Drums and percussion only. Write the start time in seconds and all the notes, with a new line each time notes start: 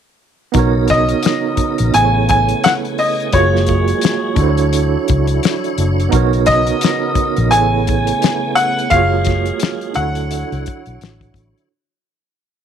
0.54 kick, closed hi-hat
0.88 kick, closed hi-hat
0.92 snare
1.09 closed hi-hat
1.23 snare, closed hi-hat
1.57 kick, closed hi-hat
1.78 closed hi-hat
1.94 closed hi-hat
2.29 kick, closed hi-hat
2.49 closed hi-hat
2.64 snare, closed hi-hat
2.85 closed hi-hat
2.98 open hi-hat
3.20 closed hi-hat
3.33 kick, closed hi-hat
3.56 snare
3.66 kick, closed hi-hat
3.88 closed hi-hat
4.01 snare, closed hi-hat
4.36 kick, closed hi-hat
4.57 closed hi-hat
4.73 closed hi-hat
5.08 kick, closed hi-hat
5.27 closed hi-hat
5.43 snare, closed hi-hat
5.64 closed hi-hat
5.78 closed hi-hat
6.00 closed hi-hat
6.12 kick, closed hi-hat
6.33 closed hi-hat
6.46 kick, closed hi-hat
6.50 snare
6.67 closed hi-hat
6.81 snare, closed hi-hat
7.15 kick, closed hi-hat
7.37 closed hi-hat
7.52 closed hi-hat
7.87 kick, closed hi-hat
8.07 closed hi-hat
8.22 snare, closed hi-hat
8.57 closed hi-hat
8.79 closed hi-hat
8.91 kick, closed hi-hat
9.25 kick, closed hi-hat
9.29 snare
9.46 closed hi-hat
9.60 snare, closed hi-hat
9.81 closed hi-hat
9.94 closed hi-hat
10.15 closed hi-hat
10.31 closed hi-hat
10.52 closed hi-hat
10.66 kick, closed hi-hat
10.86 closed hi-hat
11.01 snare, closed hi-hat
11.21 kick, closed hi-hat
11.34 kick, closed hi-hat
11.58 closed hi-hat